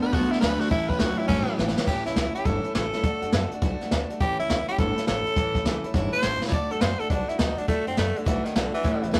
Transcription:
Already playing: D3 B3
0.02 A3 D4 F#4 B4, muted upright bass stroke, ride
0.13 B1 D3 A3 B3 D4 F#4, kick, ride
0.31 A3 D4 E4 F#4, muted upright bass stroke, snare, ride
0.40 D2 D3 A3 D4 F#4 B4, snare, ride
0.59 A3 D4 F#4, snare, ride
0.69 A1 A2 E3 A3 C#4 E4, kick, ride
0.88 C#2 A3 C#4 E4 B4, kick, ride
0.99 C#2 A2 E3 F#3 A3 C#4 E4 F#4, snare, ride
1.17 A3 C#4 E4, muted upright bass stroke, ride
1.27 G1 A2 E3 F#3 A3 C#4 E4, kick, snare, ride
1.46 A3 C#4 E4, muted upright bass stroke, ride
1.57 A1 A2 E3 A3 C#4 E4, snare
1.68 snare
1.76 A3 C#4 E4, muted upright bass stroke, snare
1.86 A1 A2 E3 A3 C#4 E4 G4, kick, crash
2.04 C#2 A3 C#4 E4, snare, closed hi-hat
2.14 C#2 E3 A3 C#4 E4, snare, closed hi-hat
2.35 A3 C#4 E4 G4, muted upright bass stroke, closed hi-hat
2.45 G1 A2 E3 A3 C#4 E4 A4, kick, closed hi-hat
2.64 A3 C#4 E4, closed hi-hat
2.75 A1 E3 A3 C#4 E4 A4, snare, closed hi-hat
2.93 A3 C#4 E4, snare, closed hi-hat
3.03 D2 D3 A3 D4 F#4, kick, closed hi-hat
3.22 F#2 A3 D4 F#4, closed hi-hat
3.32 F#2 D3 A3 D4 F#4, snare, closed hi-hat
3.51 D4 F#4, muted upright bass stroke, closed hi-hat
3.55 A3
3.61 B1 D3 A3 D4 F#4, kick, closed hi-hat
3.81 A3 D4 F#4, snare, closed hi-hat
3.91 D2 D3 A3 D4 F#4, snare, closed hi-hat
4.10 A3 D4 F#4, muted upright bass stroke, closed hi-hat
4.20 A1 A2 E3 A3 C#4 E4 G4, kick, closed hi-hat
4.39 C#2 C#4 E4, closed hi-hat
4.43 A3
4.50 C#2 E3 A3 C#4 E4, snare, closed hi-hat
4.68 A3 C#4 E4 G4, muted upright bass stroke, closed hi-hat
4.78 G1 A2 E3 A3 C#4 E4 A4, kick, closed hi-hat
4.96 A3 C#4 E4, muted upright bass stroke, snare, closed hi-hat
5.06 A1 E3 A3 C#4 E4 A4, snare, closed hi-hat
5.25 A3 C#4 E4, muted upright bass stroke, closed hi-hat
5.36 A1 A2 E3 A3 C#4 E4, kick, closed hi-hat
5.55 C#2 A3 C#4 E4, kick, snare, closed hi-hat
5.65 C#2 E3 A3 C#4, snare, closed hi-hat
5.69 E4
5.83 A3 C#4 E4, muted upright bass stroke, closed hi-hat
5.94 G1 A2 E3 A3 C#4 E4, kick, snare, closed hi-hat
6.12 A3 C#4 E4 C5, muted upright bass stroke, closed hi-hat
6.22 A1 E3 A3 C#4 E4, snare, closed hi-hat
6.41 A3 C#4 E4, muted upright bass stroke, snare
6.48 D2 D3, kick, snare, closed hi-hat
6.52 A3 D4 F#4 D5
6.70 F#2 A3 D4 F#4 A4, closed hi-hat
6.81 F#2 D3 A3 D4 F#4 C5, snare, closed hi-hat
6.99 A3 D4 F#4 A4, muted upright bass stroke, closed hi-hat
7.10 B1 D3 A3 D4 F#4, kick, closed hi-hat
7.28 A3 D4 E4 F#4, muted upright bass stroke, snare, closed hi-hat
7.38 D2 D3 A3 D4 D#4 F#4, snare, closed hi-hat
7.57 A3 D4 F#4, muted upright bass stroke, closed hi-hat
7.68 D2 D3 A3 D4 F#4, kick, closed hi-hat
7.86 F#2 A3 C4 D4 F#4, closed hi-hat
7.97 F#2 D3 A3 D4 F#4, snare, closed hi-hat
8.15 D3 A3 D4 F#4, closed hi-hat
8.25 B1 D3 E3 A3 D4 F#4, kick, snare, closed hi-hat
8.44 D#3 A3 D4 F#4, snare, closed hi-hat
8.55 B1 D3 A3 D4 F#4, snare, closed hi-hat
8.72 E3 A3 D4 F#4, muted upright bass stroke, closed hi-hat
8.83 A1 A2 E3 A3 C#4 E4, kick, closed hi-hat
9.02 C#2 A3 C#4 E4, closed hi-hat
9.11 C#2 A2 E3 F#3 A3 C#4 E4, snare, closed hi-hat

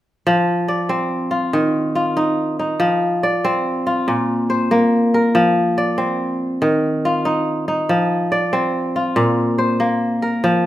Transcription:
0.27 F3
0.68 D5
0.89 C4
1.31 F4
1.53 D#3
1.95 F4
2.17 D#4
2.59 D#4
2.80 F3
3.23 D5
3.44 C4
3.87 F4
4.08 A#2
4.50 C5
4.71 A#3
5.14 A#4
5.35 F3
5.78 D5
5.98 C4
6.62 D#3
7.05 F4
7.25 D#4
7.68 D#4
7.89 F3
8.32 D5
8.53 C4
8.96 F4
9.16 A#2
9.58 C5
9.80 A#3
10.22 A#4
10.44 F3

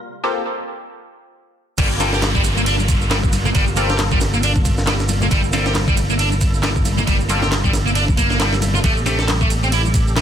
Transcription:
0.24 A#3 C4 F4 G4 A4
1.78 G1 C3 G3 A#3 F4 A4, kick, crash, ride, downlifter, shaker
1.91 shaker
2.00 G3 A#3 C4 F4 A4, snare, ride, shaker
2.13 G4, snare, shaker
2.22 snare, clap, ride, high conga, shaker
2.35 G3, kick, shaker
2.44 ride, shaker
2.57 A#3, shaker
2.66 D4, ride, shaker
2.80 high conga, shaker
2.88 kick, ride, shaker
3.01 shaker
3.11 G3, snare, clap, ride, shaker
3.23 kick, shaker
3.33 ride, high conga, shaker
3.45 A#3, low conga, shaker
3.55 G1 G3, kick, ride, shaker
3.67 shaker
3.77 G3 A#3 C4 F4 A4, ride, shaker
3.89 G4, snare, shaker
3.98 snare, clap, ride, high conga, shaker
4.11 G3, kick, shaker
4.21 snare, ride, shaker
4.34 A#3, shaker
4.43 D4, ride, shaker
4.56 kick, high conga, shaker
4.65 kick, ride, shaker
4.78 snare, shaker
4.87 G3, snare, clap, ride, shaker
5.00 snare, shaker
5.09 ride, high conga, shaker
5.21 A#3, low conga, shaker
5.31 G1 G3 E4, kick, ride, shaker
5.44 shaker
5.53 G3 A#3 C4 F4 A4, snare, ride, shaker
5.66 G4, snare, shaker
5.74 snare, clap, ride, high conga, shaker
5.88 G3, kick, shaker
5.97 ride, shaker
6.10 A#3, shaker
6.19 D4, ride, shaker
6.32 high conga, shaker
6.41 kick, ride, shaker
6.54 shaker
6.63 G3, snare, clap, ride, shaker
6.76 kick, shaker
6.85 ride, high conga, shaker
6.98 A#3, low conga, shaker
7.07 G1 G3, kick, ride, shaker
7.20 shaker
7.29 G3 A#3 C4 F4 A4, ride, shaker
7.42 G4, snare, low conga, shaker
7.51 snare, clap, ride, high conga, shaker
7.64 G3, kick, shaker
7.73 snare, ride, shaker
7.86 A#3, shaker
7.95 D4, ride, shaker
8.08 kick, high conga, shaker
8.17 A#3, kick, ride, shaker
8.30 A#3, snare, shaker
8.40 G3, snare, clap, ride, shaker
8.53 snare, shaker
8.61 ride, high conga, shaker
8.74 F4, low conga, shaker
8.84 A1 A3 G4, kick, ride, shaker
8.97 shaker
9.06 A3 C4 G4 A4, snare, ride, shaker
9.19 A4, snare, shaker
9.28 snare, clap, ride, high conga, shaker
9.41 A3, kick, shaker
9.50 ride, shaker
9.63 C4, shaker
9.72 E4, ride, shaker
9.85 high conga, shaker
9.94 kick, ride, shaker
10.08 shaker
10.16 A3, snare, clap, ride, shaker

